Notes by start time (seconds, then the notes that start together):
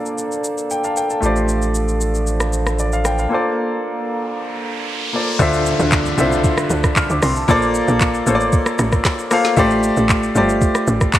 Already playing: A#3 D4 F4 A4 C5 D5, downlifter
0.06 shaker
0.18 shaker
0.32 shaker
0.44 shaker
0.58 shaker
0.70 G5, shaker
0.84 F5 A5, shaker
0.97 G5, shaker
1.10 A5, shaker
1.20 A1 F3 A3 D4 F4 G4, shaker
1.25 C5 D5
1.36 shaker
1.49 shaker
1.62 shaker
1.75 shaker
1.88 shaker
2.01 shaker
2.15 shaker
2.27 shaker
2.40 cross-stick, shaker
2.53 shaker
2.66 cross-stick, shaker
2.79 D5, shaker
2.93 F5, shaker
3.05 G5, cross-stick, shaker
3.19 F5, shaker
3.29 A#3 F4 A4 C5, riser
3.34 D5
5.13 A#3 F4 A4 C5 D5
5.39 D2 D3 D4 F4 C5 E5, kick, downlifter, shaker
5.53 shaker
5.66 shaker
5.79 D2, shaker
5.92 kick, clap, shaker
6.06 shaker
6.18 C2 D3 D4 E4 C5 E5, shaker
6.25 F4
6.32 shaker
6.44 kick, shaker
6.58 cross-stick, shaker
6.70 D2, shaker
6.84 kick, cross-stick, shaker
6.96 F6, kick, clap, shaker
7.10 D2 D6, shaker
7.22 C2 C6, cross-stick, open hi-hat, shaker
7.36 A5, shaker
7.48 A#1 A#3 F4 A4 C5 D5, kick, shaker
7.62 shaker
7.75 shaker
7.88 A#1, shaker
8.01 kick, clap, shaker
8.14 shaker
8.26 A1 A#3 F4 A4 C5 C#5, shaker
8.35 D5
8.40 shaker
8.53 kick, shaker
8.66 cross-stick, shaker
8.79 A1, cross-stick, shaker
8.92 kick, cross-stick, shaker
9.05 kick, snare, clap, shaker
9.19 shaker
9.31 A#3 F4 A4 C5 F5, cross-stick, open hi-hat, shaker
9.45 snare, shaker
9.57 A1 A3 F4 G4 C5 D5, kick, shaker
9.71 shaker
9.83 shaker
9.97 A1, shaker
10.09 kick, clap, shaker
10.23 shaker
10.35 G1 A3 F4 G4 C5 D5, shaker
10.49 shaker
10.62 kick, shaker
10.75 cross-stick, shaker
10.87 A1, shaker
11.01 kick, cross-stick, shaker
11.13 kick, clap, shaker